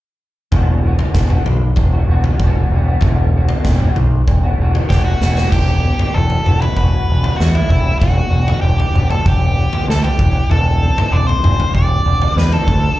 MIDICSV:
0, 0, Header, 1, 6, 480
1, 0, Start_track
1, 0, Key_signature, 1, "minor"
1, 0, Tempo, 622407
1, 418, Time_signature, 4, 2, 24, 8
1, 10022, End_track
2, 0, Start_track
2, 0, Title_t, "Lead electric guitar"
2, 0, Program_c, 0, 29
2, 3770, Note_on_c, 0, 67, 70
2, 3889, Note_off_c, 0, 67, 0
2, 3892, Note_on_c, 0, 66, 73
2, 4253, Note_off_c, 0, 66, 0
2, 4256, Note_on_c, 0, 67, 72
2, 4736, Note_on_c, 0, 69, 79
2, 4751, Note_off_c, 0, 67, 0
2, 5097, Note_off_c, 0, 69, 0
2, 5100, Note_on_c, 0, 71, 68
2, 5216, Note_off_c, 0, 71, 0
2, 5225, Note_on_c, 0, 71, 78
2, 5670, Note_off_c, 0, 71, 0
2, 5678, Note_on_c, 0, 66, 71
2, 5819, Note_off_c, 0, 66, 0
2, 5819, Note_on_c, 0, 64, 73
2, 6163, Note_off_c, 0, 64, 0
2, 6166, Note_on_c, 0, 66, 73
2, 6640, Note_off_c, 0, 66, 0
2, 6643, Note_on_c, 0, 67, 75
2, 7021, Note_off_c, 0, 67, 0
2, 7024, Note_on_c, 0, 69, 72
2, 7133, Note_off_c, 0, 69, 0
2, 7152, Note_on_c, 0, 67, 79
2, 7595, Note_off_c, 0, 67, 0
2, 7636, Note_on_c, 0, 69, 77
2, 7739, Note_off_c, 0, 69, 0
2, 7742, Note_on_c, 0, 67, 71
2, 8104, Note_off_c, 0, 67, 0
2, 8107, Note_on_c, 0, 69, 87
2, 8578, Note_on_c, 0, 74, 94
2, 8598, Note_off_c, 0, 69, 0
2, 8690, Note_off_c, 0, 74, 0
2, 8690, Note_on_c, 0, 72, 82
2, 9060, Note_off_c, 0, 72, 0
2, 9064, Note_on_c, 0, 74, 91
2, 9512, Note_off_c, 0, 74, 0
2, 9552, Note_on_c, 0, 71, 79
2, 9666, Note_off_c, 0, 71, 0
2, 9666, Note_on_c, 0, 69, 84
2, 10022, Note_off_c, 0, 69, 0
2, 10022, End_track
3, 0, Start_track
3, 0, Title_t, "Clean electric guitar"
3, 0, Program_c, 1, 27
3, 401, Note_on_c, 1, 40, 67
3, 410, Note_on_c, 1, 47, 65
3, 413, Note_on_c, 1, 52, 73
3, 420, Note_on_c, 1, 55, 72
3, 424, Note_on_c, 1, 59, 69
3, 430, Note_on_c, 1, 66, 73
3, 643, Note_off_c, 1, 52, 0
3, 646, Note_on_c, 1, 52, 54
3, 655, Note_off_c, 1, 55, 0
3, 658, Note_on_c, 1, 55, 53
3, 660, Note_off_c, 1, 59, 0
3, 663, Note_on_c, 1, 59, 66
3, 668, Note_off_c, 1, 66, 0
3, 671, Note_on_c, 1, 66, 60
3, 865, Note_off_c, 1, 47, 0
3, 867, Note_off_c, 1, 40, 0
3, 870, Note_on_c, 1, 40, 67
3, 874, Note_on_c, 1, 47, 76
3, 884, Note_off_c, 1, 52, 0
3, 886, Note_off_c, 1, 55, 0
3, 887, Note_on_c, 1, 52, 70
3, 889, Note_off_c, 1, 59, 0
3, 889, Note_on_c, 1, 55, 78
3, 893, Note_off_c, 1, 66, 0
3, 893, Note_on_c, 1, 59, 75
3, 896, Note_on_c, 1, 66, 71
3, 996, Note_off_c, 1, 66, 0
3, 999, Note_on_c, 1, 66, 60
3, 1006, Note_off_c, 1, 59, 0
3, 1009, Note_on_c, 1, 59, 54
3, 1014, Note_off_c, 1, 55, 0
3, 1017, Note_on_c, 1, 55, 46
3, 1023, Note_off_c, 1, 52, 0
3, 1027, Note_on_c, 1, 52, 48
3, 1136, Note_off_c, 1, 52, 0
3, 1141, Note_off_c, 1, 55, 0
3, 1142, Note_off_c, 1, 59, 0
3, 1143, Note_off_c, 1, 66, 0
3, 1246, Note_off_c, 1, 47, 0
3, 1491, Note_on_c, 1, 66, 50
3, 1498, Note_on_c, 1, 59, 52
3, 1504, Note_on_c, 1, 55, 50
3, 1511, Note_on_c, 1, 52, 46
3, 1514, Note_off_c, 1, 40, 0
3, 1606, Note_off_c, 1, 52, 0
3, 1609, Note_off_c, 1, 55, 0
3, 1609, Note_on_c, 1, 52, 55
3, 1612, Note_on_c, 1, 55, 60
3, 1619, Note_off_c, 1, 59, 0
3, 1622, Note_on_c, 1, 59, 66
3, 1627, Note_off_c, 1, 66, 0
3, 1630, Note_on_c, 1, 66, 69
3, 1735, Note_off_c, 1, 66, 0
3, 1738, Note_on_c, 1, 66, 58
3, 1740, Note_off_c, 1, 59, 0
3, 1743, Note_on_c, 1, 59, 54
3, 1747, Note_off_c, 1, 55, 0
3, 1750, Note_on_c, 1, 55, 59
3, 1759, Note_off_c, 1, 52, 0
3, 1762, Note_on_c, 1, 52, 48
3, 1850, Note_on_c, 1, 40, 75
3, 1860, Note_on_c, 1, 47, 78
3, 1863, Note_off_c, 1, 52, 0
3, 1866, Note_on_c, 1, 52, 74
3, 1870, Note_off_c, 1, 59, 0
3, 1871, Note_off_c, 1, 55, 0
3, 1873, Note_off_c, 1, 66, 0
3, 1873, Note_on_c, 1, 59, 84
3, 1874, Note_on_c, 1, 55, 84
3, 1880, Note_on_c, 1, 66, 90
3, 1972, Note_off_c, 1, 66, 0
3, 1975, Note_on_c, 1, 66, 68
3, 1979, Note_off_c, 1, 59, 0
3, 1982, Note_on_c, 1, 59, 58
3, 1985, Note_off_c, 1, 55, 0
3, 1988, Note_on_c, 1, 55, 61
3, 1991, Note_off_c, 1, 52, 0
3, 1994, Note_on_c, 1, 52, 51
3, 2092, Note_off_c, 1, 52, 0
3, 2095, Note_on_c, 1, 52, 55
3, 2106, Note_off_c, 1, 55, 0
3, 2109, Note_on_c, 1, 55, 63
3, 2116, Note_off_c, 1, 59, 0
3, 2118, Note_off_c, 1, 66, 0
3, 2119, Note_on_c, 1, 59, 74
3, 2122, Note_on_c, 1, 66, 67
3, 2211, Note_off_c, 1, 66, 0
3, 2218, Note_off_c, 1, 47, 0
3, 2220, Note_off_c, 1, 59, 0
3, 2220, Note_on_c, 1, 66, 58
3, 2225, Note_off_c, 1, 55, 0
3, 2229, Note_on_c, 1, 59, 60
3, 2231, Note_off_c, 1, 52, 0
3, 2235, Note_on_c, 1, 55, 49
3, 2240, Note_on_c, 1, 52, 47
3, 2243, Note_off_c, 1, 40, 0
3, 2333, Note_off_c, 1, 52, 0
3, 2333, Note_on_c, 1, 40, 67
3, 2334, Note_off_c, 1, 55, 0
3, 2339, Note_on_c, 1, 47, 64
3, 2342, Note_off_c, 1, 59, 0
3, 2343, Note_on_c, 1, 52, 76
3, 2343, Note_on_c, 1, 55, 70
3, 2346, Note_off_c, 1, 66, 0
3, 2351, Note_on_c, 1, 59, 68
3, 2356, Note_on_c, 1, 66, 77
3, 2561, Note_off_c, 1, 52, 0
3, 2570, Note_on_c, 1, 52, 56
3, 2571, Note_off_c, 1, 55, 0
3, 2579, Note_off_c, 1, 59, 0
3, 2581, Note_on_c, 1, 55, 60
3, 2588, Note_on_c, 1, 59, 57
3, 2589, Note_off_c, 1, 66, 0
3, 2598, Note_on_c, 1, 66, 63
3, 2809, Note_off_c, 1, 40, 0
3, 2818, Note_off_c, 1, 47, 0
3, 2818, Note_on_c, 1, 40, 72
3, 2823, Note_off_c, 1, 52, 0
3, 2827, Note_off_c, 1, 55, 0
3, 2828, Note_on_c, 1, 47, 78
3, 2832, Note_off_c, 1, 59, 0
3, 2832, Note_on_c, 1, 52, 79
3, 2836, Note_on_c, 1, 55, 79
3, 2837, Note_off_c, 1, 66, 0
3, 2841, Note_on_c, 1, 59, 72
3, 2847, Note_on_c, 1, 66, 86
3, 2934, Note_off_c, 1, 66, 0
3, 2940, Note_off_c, 1, 59, 0
3, 2944, Note_on_c, 1, 66, 64
3, 2949, Note_off_c, 1, 55, 0
3, 2949, Note_on_c, 1, 59, 54
3, 2955, Note_off_c, 1, 52, 0
3, 2958, Note_on_c, 1, 55, 54
3, 2964, Note_on_c, 1, 52, 49
3, 3052, Note_off_c, 1, 52, 0
3, 3054, Note_off_c, 1, 55, 0
3, 3055, Note_off_c, 1, 59, 0
3, 3058, Note_off_c, 1, 66, 0
3, 3177, Note_off_c, 1, 40, 0
3, 3183, Note_off_c, 1, 47, 0
3, 3420, Note_on_c, 1, 66, 62
3, 3428, Note_on_c, 1, 59, 54
3, 3441, Note_on_c, 1, 55, 50
3, 3450, Note_on_c, 1, 52, 45
3, 3527, Note_off_c, 1, 52, 0
3, 3536, Note_on_c, 1, 52, 60
3, 3540, Note_off_c, 1, 55, 0
3, 3543, Note_off_c, 1, 59, 0
3, 3549, Note_on_c, 1, 55, 65
3, 3550, Note_off_c, 1, 66, 0
3, 3553, Note_on_c, 1, 59, 61
3, 3559, Note_on_c, 1, 66, 68
3, 3642, Note_off_c, 1, 66, 0
3, 3651, Note_on_c, 1, 66, 61
3, 3657, Note_off_c, 1, 59, 0
3, 3666, Note_on_c, 1, 59, 61
3, 3668, Note_off_c, 1, 55, 0
3, 3669, Note_off_c, 1, 52, 0
3, 3677, Note_on_c, 1, 55, 56
3, 3678, Note_on_c, 1, 52, 54
3, 3774, Note_off_c, 1, 52, 0
3, 3775, Note_on_c, 1, 40, 76
3, 3779, Note_off_c, 1, 55, 0
3, 3783, Note_on_c, 1, 47, 78
3, 3783, Note_on_c, 1, 52, 75
3, 3788, Note_off_c, 1, 66, 0
3, 3788, Note_on_c, 1, 55, 84
3, 3789, Note_off_c, 1, 59, 0
3, 3798, Note_on_c, 1, 59, 86
3, 3798, Note_on_c, 1, 66, 80
3, 3899, Note_off_c, 1, 66, 0
3, 3909, Note_on_c, 1, 66, 65
3, 3911, Note_off_c, 1, 59, 0
3, 3914, Note_off_c, 1, 55, 0
3, 3920, Note_on_c, 1, 59, 60
3, 3923, Note_off_c, 1, 52, 0
3, 3923, Note_on_c, 1, 55, 57
3, 3933, Note_on_c, 1, 52, 48
3, 4001, Note_off_c, 1, 40, 0
3, 4005, Note_off_c, 1, 47, 0
3, 4008, Note_off_c, 1, 66, 0
3, 4014, Note_off_c, 1, 59, 0
3, 4015, Note_off_c, 1, 55, 0
3, 4020, Note_off_c, 1, 52, 0
3, 4022, Note_on_c, 1, 40, 76
3, 4028, Note_on_c, 1, 47, 77
3, 4035, Note_on_c, 1, 52, 73
3, 4041, Note_on_c, 1, 55, 83
3, 4045, Note_on_c, 1, 59, 95
3, 4050, Note_on_c, 1, 66, 83
3, 4136, Note_off_c, 1, 66, 0
3, 4143, Note_off_c, 1, 59, 0
3, 4146, Note_on_c, 1, 66, 55
3, 4148, Note_off_c, 1, 55, 0
3, 4152, Note_on_c, 1, 59, 63
3, 4157, Note_on_c, 1, 55, 60
3, 4159, Note_off_c, 1, 52, 0
3, 4169, Note_on_c, 1, 52, 53
3, 4245, Note_off_c, 1, 40, 0
3, 4247, Note_off_c, 1, 66, 0
3, 4248, Note_off_c, 1, 47, 0
3, 4250, Note_off_c, 1, 59, 0
3, 4253, Note_off_c, 1, 55, 0
3, 4258, Note_off_c, 1, 52, 0
3, 4267, Note_on_c, 1, 40, 58
3, 4497, Note_on_c, 1, 47, 52
3, 4740, Note_on_c, 1, 52, 58
3, 4980, Note_on_c, 1, 59, 59
3, 5232, Note_on_c, 1, 66, 63
3, 5447, Note_off_c, 1, 59, 0
3, 5456, Note_on_c, 1, 59, 57
3, 5697, Note_off_c, 1, 47, 0
3, 5700, Note_on_c, 1, 55, 60
3, 5935, Note_off_c, 1, 52, 0
3, 5938, Note_on_c, 1, 52, 55
3, 6169, Note_off_c, 1, 40, 0
3, 6172, Note_on_c, 1, 40, 57
3, 6420, Note_on_c, 1, 47, 53
3, 6425, Note_off_c, 1, 66, 0
3, 6650, Note_off_c, 1, 52, 0
3, 6658, Note_off_c, 1, 59, 0
3, 6659, Note_on_c, 1, 52, 53
3, 6891, Note_on_c, 1, 59, 56
3, 7374, Note_off_c, 1, 59, 0
3, 7376, Note_off_c, 1, 40, 0
3, 7383, Note_on_c, 1, 59, 59
3, 7620, Note_off_c, 1, 47, 0
3, 7625, Note_off_c, 1, 55, 0
3, 7628, Note_on_c, 1, 55, 57
3, 7854, Note_off_c, 1, 52, 0
3, 7862, Note_off_c, 1, 59, 0
3, 7863, Note_on_c, 1, 52, 60
3, 7864, Note_off_c, 1, 55, 0
3, 8082, Note_off_c, 1, 52, 0
3, 8092, Note_on_c, 1, 52, 63
3, 8343, Note_on_c, 1, 60, 52
3, 8558, Note_off_c, 1, 52, 0
3, 8568, Note_on_c, 1, 52, 61
3, 8816, Note_on_c, 1, 62, 59
3, 9065, Note_on_c, 1, 67, 65
3, 9288, Note_off_c, 1, 62, 0
3, 9297, Note_on_c, 1, 62, 61
3, 9534, Note_off_c, 1, 60, 0
3, 9544, Note_on_c, 1, 60, 62
3, 9775, Note_off_c, 1, 52, 0
3, 9777, Note_on_c, 1, 50, 59
3, 9779, Note_off_c, 1, 62, 0
3, 9782, Note_off_c, 1, 60, 0
3, 9783, Note_off_c, 1, 67, 0
3, 9998, Note_off_c, 1, 50, 0
3, 10022, End_track
4, 0, Start_track
4, 0, Title_t, "Picked electric bass"
4, 0, Program_c, 2, 34
4, 403, Note_on_c, 2, 28, 77
4, 774, Note_off_c, 2, 28, 0
4, 882, Note_on_c, 2, 28, 72
4, 1071, Note_off_c, 2, 28, 0
4, 1126, Note_on_c, 2, 35, 64
4, 1313, Note_off_c, 2, 35, 0
4, 1366, Note_on_c, 2, 28, 73
4, 1553, Note_off_c, 2, 28, 0
4, 1602, Note_on_c, 2, 28, 67
4, 1791, Note_off_c, 2, 28, 0
4, 1850, Note_on_c, 2, 28, 72
4, 2036, Note_off_c, 2, 28, 0
4, 2084, Note_on_c, 2, 28, 72
4, 2272, Note_off_c, 2, 28, 0
4, 2337, Note_on_c, 2, 28, 77
4, 2702, Note_off_c, 2, 28, 0
4, 2813, Note_on_c, 2, 28, 81
4, 2997, Note_off_c, 2, 28, 0
4, 3060, Note_on_c, 2, 35, 69
4, 3242, Note_off_c, 2, 35, 0
4, 3299, Note_on_c, 2, 28, 77
4, 3481, Note_off_c, 2, 28, 0
4, 3532, Note_on_c, 2, 28, 64
4, 3717, Note_off_c, 2, 28, 0
4, 3784, Note_on_c, 2, 28, 76
4, 3964, Note_off_c, 2, 28, 0
4, 4023, Note_on_c, 2, 28, 76
4, 4203, Note_off_c, 2, 28, 0
4, 4259, Note_on_c, 2, 28, 74
4, 4559, Note_off_c, 2, 28, 0
4, 4751, Note_on_c, 2, 28, 80
4, 4897, Note_off_c, 2, 28, 0
4, 4986, Note_on_c, 2, 28, 62
4, 5134, Note_off_c, 2, 28, 0
4, 5219, Note_on_c, 2, 28, 71
4, 5369, Note_off_c, 2, 28, 0
4, 5475, Note_on_c, 2, 28, 72
4, 5620, Note_off_c, 2, 28, 0
4, 5710, Note_on_c, 2, 40, 68
4, 5857, Note_off_c, 2, 40, 0
4, 5939, Note_on_c, 2, 28, 74
4, 6089, Note_off_c, 2, 28, 0
4, 6181, Note_on_c, 2, 28, 72
4, 6330, Note_off_c, 2, 28, 0
4, 6409, Note_on_c, 2, 28, 69
4, 6562, Note_off_c, 2, 28, 0
4, 6655, Note_on_c, 2, 28, 81
4, 6806, Note_off_c, 2, 28, 0
4, 6893, Note_on_c, 2, 28, 68
4, 7045, Note_off_c, 2, 28, 0
4, 7138, Note_on_c, 2, 28, 71
4, 7439, Note_off_c, 2, 28, 0
4, 7622, Note_on_c, 2, 38, 74
4, 7772, Note_off_c, 2, 38, 0
4, 7861, Note_on_c, 2, 28, 65
4, 8011, Note_off_c, 2, 28, 0
4, 8096, Note_on_c, 2, 28, 84
4, 8398, Note_off_c, 2, 28, 0
4, 8571, Note_on_c, 2, 28, 80
4, 8725, Note_off_c, 2, 28, 0
4, 8816, Note_on_c, 2, 28, 67
4, 8968, Note_off_c, 2, 28, 0
4, 9062, Note_on_c, 2, 28, 71
4, 9212, Note_off_c, 2, 28, 0
4, 9302, Note_on_c, 2, 28, 73
4, 9452, Note_off_c, 2, 28, 0
4, 9535, Note_on_c, 2, 40, 70
4, 9687, Note_off_c, 2, 40, 0
4, 9774, Note_on_c, 2, 38, 73
4, 9927, Note_off_c, 2, 38, 0
4, 10022, End_track
5, 0, Start_track
5, 0, Title_t, "Muted clean electric guitar strokes"
5, 1139, Note_on_c, 9, 29, 39
5, 1216, Note_off_c, 9, 29, 0
5, 3061, Note_on_c, 9, 29, 39
5, 3138, Note_off_c, 9, 29, 0
5, 10022, End_track
6, 0, Start_track
6, 0, Title_t, "Drums"
6, 400, Note_on_c, 9, 43, 65
6, 403, Note_on_c, 9, 36, 80
6, 477, Note_off_c, 9, 43, 0
6, 481, Note_off_c, 9, 36, 0
6, 762, Note_on_c, 9, 43, 68
6, 839, Note_off_c, 9, 43, 0
6, 882, Note_on_c, 9, 38, 58
6, 884, Note_on_c, 9, 36, 87
6, 959, Note_off_c, 9, 38, 0
6, 961, Note_off_c, 9, 36, 0
6, 1002, Note_on_c, 9, 47, 57
6, 1079, Note_off_c, 9, 47, 0
6, 1125, Note_on_c, 9, 43, 67
6, 1202, Note_off_c, 9, 43, 0
6, 1358, Note_on_c, 9, 43, 65
6, 1365, Note_on_c, 9, 36, 82
6, 1435, Note_off_c, 9, 43, 0
6, 1442, Note_off_c, 9, 36, 0
6, 1726, Note_on_c, 9, 43, 66
6, 1804, Note_off_c, 9, 43, 0
6, 1848, Note_on_c, 9, 36, 89
6, 1925, Note_off_c, 9, 36, 0
6, 2320, Note_on_c, 9, 43, 73
6, 2331, Note_on_c, 9, 36, 88
6, 2397, Note_off_c, 9, 43, 0
6, 2408, Note_off_c, 9, 36, 0
6, 2688, Note_on_c, 9, 43, 77
6, 2765, Note_off_c, 9, 43, 0
6, 2812, Note_on_c, 9, 36, 91
6, 2813, Note_on_c, 9, 38, 66
6, 2889, Note_off_c, 9, 36, 0
6, 2890, Note_off_c, 9, 38, 0
6, 2927, Note_on_c, 9, 47, 58
6, 3004, Note_off_c, 9, 47, 0
6, 3055, Note_on_c, 9, 43, 72
6, 3132, Note_off_c, 9, 43, 0
6, 3298, Note_on_c, 9, 36, 81
6, 3299, Note_on_c, 9, 43, 63
6, 3375, Note_off_c, 9, 36, 0
6, 3377, Note_off_c, 9, 43, 0
6, 3663, Note_on_c, 9, 43, 68
6, 3740, Note_off_c, 9, 43, 0
6, 3780, Note_on_c, 9, 36, 86
6, 3786, Note_on_c, 9, 38, 45
6, 3857, Note_off_c, 9, 36, 0
6, 3863, Note_off_c, 9, 38, 0
6, 4023, Note_on_c, 9, 38, 63
6, 4100, Note_off_c, 9, 38, 0
6, 4146, Note_on_c, 9, 38, 57
6, 4223, Note_off_c, 9, 38, 0
6, 4259, Note_on_c, 9, 36, 90
6, 4260, Note_on_c, 9, 43, 64
6, 4260, Note_on_c, 9, 49, 74
6, 4336, Note_off_c, 9, 36, 0
6, 4337, Note_off_c, 9, 43, 0
6, 4337, Note_off_c, 9, 49, 0
6, 4622, Note_on_c, 9, 43, 70
6, 4622, Note_on_c, 9, 47, 66
6, 4699, Note_off_c, 9, 43, 0
6, 4699, Note_off_c, 9, 47, 0
6, 4858, Note_on_c, 9, 43, 59
6, 4935, Note_off_c, 9, 43, 0
6, 4983, Note_on_c, 9, 47, 67
6, 5060, Note_off_c, 9, 47, 0
6, 5106, Note_on_c, 9, 43, 72
6, 5183, Note_off_c, 9, 43, 0
6, 5218, Note_on_c, 9, 36, 84
6, 5295, Note_off_c, 9, 36, 0
6, 5584, Note_on_c, 9, 43, 69
6, 5661, Note_off_c, 9, 43, 0
6, 5710, Note_on_c, 9, 38, 67
6, 5787, Note_off_c, 9, 38, 0
6, 5824, Note_on_c, 9, 43, 77
6, 5901, Note_off_c, 9, 43, 0
6, 5941, Note_on_c, 9, 36, 56
6, 6018, Note_off_c, 9, 36, 0
6, 6182, Note_on_c, 9, 36, 97
6, 6188, Note_on_c, 9, 43, 66
6, 6259, Note_off_c, 9, 36, 0
6, 6265, Note_off_c, 9, 43, 0
6, 6540, Note_on_c, 9, 43, 70
6, 6540, Note_on_c, 9, 47, 67
6, 6617, Note_off_c, 9, 43, 0
6, 6617, Note_off_c, 9, 47, 0
6, 6784, Note_on_c, 9, 43, 67
6, 6861, Note_off_c, 9, 43, 0
6, 6906, Note_on_c, 9, 47, 62
6, 6984, Note_off_c, 9, 47, 0
6, 7021, Note_on_c, 9, 43, 74
6, 7098, Note_off_c, 9, 43, 0
6, 7141, Note_on_c, 9, 36, 88
6, 7218, Note_off_c, 9, 36, 0
6, 7503, Note_on_c, 9, 43, 74
6, 7580, Note_off_c, 9, 43, 0
6, 7637, Note_on_c, 9, 38, 68
6, 7714, Note_off_c, 9, 38, 0
6, 7745, Note_on_c, 9, 43, 70
6, 7822, Note_off_c, 9, 43, 0
6, 7859, Note_on_c, 9, 36, 91
6, 7936, Note_off_c, 9, 36, 0
6, 8106, Note_on_c, 9, 43, 69
6, 8183, Note_off_c, 9, 43, 0
6, 8468, Note_on_c, 9, 43, 76
6, 8468, Note_on_c, 9, 47, 68
6, 8546, Note_off_c, 9, 43, 0
6, 8546, Note_off_c, 9, 47, 0
6, 8708, Note_on_c, 9, 43, 64
6, 8785, Note_off_c, 9, 43, 0
6, 8822, Note_on_c, 9, 47, 73
6, 8899, Note_off_c, 9, 47, 0
6, 8944, Note_on_c, 9, 43, 76
6, 9021, Note_off_c, 9, 43, 0
6, 9059, Note_on_c, 9, 36, 83
6, 9136, Note_off_c, 9, 36, 0
6, 9421, Note_on_c, 9, 43, 66
6, 9498, Note_off_c, 9, 43, 0
6, 9547, Note_on_c, 9, 38, 68
6, 9624, Note_off_c, 9, 38, 0
6, 9659, Note_on_c, 9, 43, 74
6, 9736, Note_off_c, 9, 43, 0
6, 9777, Note_on_c, 9, 36, 84
6, 9854, Note_off_c, 9, 36, 0
6, 10022, End_track
0, 0, End_of_file